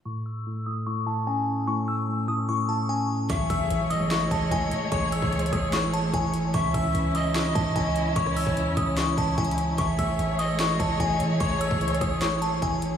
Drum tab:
HH |------------------------------------------------|------------------------------------------------|x-----x-----x-----x-----x-----x-----x-----x-----|x-----x-----x-x-x-x-----x-----x-----x-----x-----|
CP |------------------------------------------------|------------------------------------------------|------------------------x-----------------------|------------------------x-----------------------|
SD |------------------------------------------------|------------------------------------------------|------------------------o-----------------------|------------------------o-----------------------|
BD |------------------------------------------------|------------------------------------------------|o-----o-----------------------o-----o-----------|o--------o--------o-----------------o-----------|

HH |x-----x-----x-----x-----x-----x-----x-----x-----|x-----o-----x-----x-----x-----x-----x-x-x-x-----|x-----x-----x-----x-----x-----x-----x-----x-----|x-----x-----x-x-x-x-----x-----x-----x-----x-----|
CP |------------------------x-----------------------|------------------------x-----------------------|------------------------x-----------------------|------------------------x-----------------------|
SD |------------------------o-----------------------|---r--------------------o-----------------------|------------------------o-----------------------|------------------------o-----------------------|
BD |o-----o-----------------------o-----o-----------|o--------o--------o-----------o-----o-----------|o-----o-----------------------o-----o-----------|o--------o--------o-----------------o-----------|